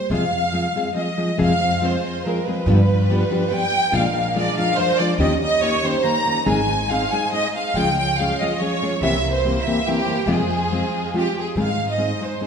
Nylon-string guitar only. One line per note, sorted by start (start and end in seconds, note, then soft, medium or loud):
0.10 0.23 F2 medium
0.10 0.23 C3 medium
0.10 0.23 F3 medium
0.10 0.23 G#3 medium
0.10 0.23 C4 medium
0.10 0.24 G#4 medium
0.53 0.66 F3 medium
0.53 0.66 G#3 medium
0.53 0.66 C4 medium
0.53 0.66 G#4 soft
0.75 0.87 F3 medium
0.75 0.88 G#3 medium
0.75 0.88 C4 medium
0.75 0.88 G#4 medium
0.94 1.08 F3 medium
0.94 1.08 G#3 soft
0.94 1.09 C4 medium
0.94 1.09 G#4 medium
1.17 1.30 F3 medium
1.17 1.30 G#3 soft
1.17 1.31 C4 soft
1.17 1.30 G#4 medium
1.38 1.52 F2 medium
1.38 1.52 C3 medium
1.38 1.51 F3 medium
1.38 1.52 G#3 medium
1.38 1.52 C4 medium
1.38 1.52 G#4 medium
1.82 1.95 F3 medium
1.82 1.95 G#3 medium
1.82 1.95 C4 medium
1.82 1.96 G#4 medium
2.26 2.38 F3 medium
2.26 2.38 G#3 medium
2.26 2.39 C4 medium
2.26 2.39 G#4 medium
2.48 2.59 F3 medium
2.48 2.59 G#3 medium
2.48 2.59 C4 soft
2.48 2.60 G#4 medium
2.67 2.80 G2 medium
2.67 2.80 D3 medium
2.67 2.80 F3 medium
2.67 2.80 B3 medium
2.67 2.80 D4 medium
2.67 2.80 G4 medium
3.10 3.22 F3 medium
3.10 3.22 B3 medium
3.10 3.22 D4 medium
3.10 3.23 G4 medium
3.31 3.43 F3 medium
3.31 3.43 B3 medium
3.31 3.43 D4 medium
3.31 3.43 G4 medium
3.50 3.63 F3 medium
3.50 3.64 B3 medium
3.50 3.64 D4 medium
3.50 3.64 G4 medium
3.92 4.05 A#2 medium
3.92 4.05 F3 medium
3.92 4.06 G#3 medium
3.92 4.06 D4 medium
3.92 4.06 F4 medium
4.35 4.48 F3 medium
4.35 4.48 G#3 medium
4.35 4.48 D4 medium
4.35 4.49 F4 medium
4.58 4.69 F3 soft
4.58 4.70 G#3 medium
4.58 4.70 D4 medium
4.58 4.70 F4 medium
4.78 4.91 F3 medium
4.78 4.91 G#3 medium
4.78 4.91 D4 medium
4.78 4.91 F4 medium
5.00 5.11 F3 medium
5.00 5.12 G#3 medium
5.00 5.12 D4 medium
5.00 5.12 F4 medium
5.19 5.32 D#3 loud
5.19 5.32 A#3 medium
5.19 5.32 C#4 medium
5.19 5.33 G4 medium
5.62 5.75 D#3 medium
5.62 5.75 A#3 medium
5.62 5.75 C#4 medium
5.62 5.75 G4 medium
5.83 5.95 D#3 soft
5.83 5.96 A#3 medium
5.83 5.96 C#4 medium
5.83 5.96 G4 medium
6.04 6.17 D#3 medium
6.04 6.17 A#3 medium
6.04 6.18 C#4 soft
6.04 6.18 G4 medium
6.26 6.38 D#3 soft
6.26 6.39 A#3 soft
6.26 6.39 C#4 medium
6.26 6.40 G4 medium
6.46 6.60 G#2 medium
6.46 6.59 D#3 medium
6.46 6.60 G#3 medium
6.46 6.60 C4 medium
6.46 6.60 D#4 medium
6.46 6.60 G#4 medium
6.90 7.03 G#3 medium
6.90 7.03 C4 medium
6.90 7.03 D#4 medium
6.90 7.03 G#4 medium
7.12 7.24 G#3 medium
7.12 7.24 C4 medium
7.12 7.24 D#4 medium
7.12 7.25 G#4 medium
7.32 7.45 G#3 medium
7.32 7.46 C4 medium
7.32 7.46 D#4 medium
7.32 7.46 G#4 medium
7.76 7.88 C#3 medium
7.76 7.88 F3 medium
7.76 7.88 G#3 medium
7.76 7.89 C#4 medium
7.76 7.89 G#4 medium
8.19 8.31 F3 medium
8.19 8.31 G#3 medium
8.19 8.31 C#4 medium
8.19 8.31 G#4 medium
8.41 8.52 F3 medium
8.41 8.52 G#3 medium
8.41 8.53 C#4 medium
8.41 8.53 G#4 medium
8.60 8.72 F3 medium
8.60 8.72 G#3 medium
8.60 8.73 C#4 medium
8.60 8.73 G#4 medium
8.82 8.93 F3 medium
8.82 8.94 G#3 medium
8.82 8.93 C#4 medium
8.82 8.94 G#4 medium
9.03 9.14 C3 medium
9.03 9.15 E3 medium
9.03 9.15 A#3 medium
9.03 9.15 C4 loud
9.03 9.15 G4 loud
9.45 9.57 E3 medium
9.45 9.57 A#3 medium
9.45 9.57 C4 medium
9.45 9.57 G4 medium
9.67 9.78 E3 medium
9.67 9.78 A#3 medium
9.67 9.78 C4 medium
9.67 9.78 G4 medium
9.87 9.99 E3 medium
9.87 9.99 A#3 medium
9.87 9.99 C4 medium
9.87 9.99 G4 medium
10.06 10.18 E3 medium
10.06 10.19 A#3 medium
10.06 10.20 C4 medium
10.06 10.20 G4 medium
10.27 10.40 F2 medium
10.27 10.40 C3 medium
10.27 10.40 F3 medium
10.27 10.40 G#3 loud
10.27 10.40 C4 medium
10.27 10.40 F4 medium
10.71 10.83 F3 medium
10.71 10.84 G#3 medium
10.71 10.84 C4 medium
10.71 10.84 F4 medium
11.14 11.26 F3 medium
11.14 11.26 G#3 medium
11.14 11.27 C4 medium
11.14 11.27 F4 medium
11.56 11.69 G#2 medium
11.56 11.69 D#3 medium
11.56 11.69 G#3 medium
11.56 11.69 C4 medium
11.56 11.69 D#4 medium
11.56 11.69 G#4 medium
11.97 12.10 G#3 medium
11.97 12.11 C4 medium
11.97 12.11 D#4 medium
11.97 12.12 G#4 medium
12.21 12.32 G#3 soft
12.21 12.33 C4 soft
12.21 12.33 D#4 soft
12.21 12.33 G#4 soft
12.41 12.47 G#3 medium
12.41 12.47 C4 medium
12.41 12.47 D#4 medium
12.41 12.47 G#4 medium